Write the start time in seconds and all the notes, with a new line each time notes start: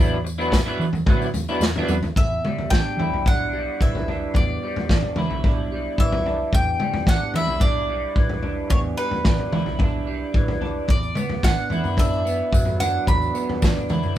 Already playing: E2 F#3 B3 D4
0.00 E4, tambourine
0.24 muted clean electric guitar stroke, tambourine
0.38 F#3 B3 D4 E4, tambourine
0.52 kick, snare, floor tom, tambourine
0.66 F#3 B3 D4 E4, tambourine
0.79 E3, tambourine
0.93 floor tom, tambourine
1.06 F#3 B3 D4 E4, kick, mid tom, tambourine
1.22 tambourine
1.34 E2, floor tom, tambourine
1.48 F#3 B3 D4 E4, tambourine
1.60 E2, muted clean electric guitar stroke, snare, tambourine
1.75 F#3 B3 D4 E4, floor tom, tambourine
1.88 E2, high tom, tambourine
2.03 muted clean electric guitar stroke, floor tom, tambourine
2.16 E2 E5, kick, floor tom
2.45 G3, mid tom
2.58 floor tom
2.70 E3 D4 G5, kick, snare
2.97 E3 E4, floor tom
3.10 B1, floor tom
3.26 D4 F#5, kick, floor tom
3.53 G3
3.80 B1 E3 E5, kick
3.95 floor tom
4.08 D4, floor tom
4.34 E2 D5, kick, floor tom
4.63 G3
4.76 floor tom
4.89 E3 D4, kick, snare
5.02 floor tom
5.16 E3 E4, floor tom, mid tom
5.30 B1, floor tom
5.44 D4, kick, floor tom
5.72 G3
5.98 B1 E3 E5, kick
6.12 floor tom
6.26 D4, floor tom
6.53 E2 G5, kick, floor tom
6.80 G3, mid tom
6.94 floor tom
7.06 E3 D4 F#5, kick, snare
7.34 E3 E4 E5, floor tom
7.47 B1, floor tom
7.60 D4 D5, kick, floor tom
7.90 G3
8.16 B1 E3, kick
8.29 floor tom
8.43 D4, floor tom
8.70 E2 C#5, kick, floor tom
8.97 G3 B4
9.11 floor tom
9.25 E3 D4, kick, snare
9.39 floor tom
9.52 E3 E4, floor tom, mid tom
9.66 B1, floor tom
9.79 D4, kick, floor tom
10.07 G3
10.34 B1 E3, kick
10.48 floor tom
10.61 D4, floor tom
10.88 E2 D5, kick, floor tom
11.03 tambourine
11.15 B3, mid tom, tambourine
11.29 floor tom
11.43 E3 D4 F#5, kick, snare, tambourine
11.58 tambourine
11.70 E3 E4, floor tom, tambourine
11.84 F#2, floor tom, tambourine
11.97 D4 E5, kick, floor tom, tambourine
12.13 tambourine
12.25 B3, tambourine
12.52 F#2 F#3, kick, tambourine
12.65 floor tom
12.80 D4 F#5, floor tom, tambourine
13.07 E2 B5, kick, floor tom
13.22 tambourine
13.34 B3, tambourine
13.49 floor tom
13.62 E3 D4, kick, snare, tambourine
13.76 floor tom, tambourine
13.89 E3 E4, floor tom, mid tom, tambourine
14.03 F#2, floor tom, tambourine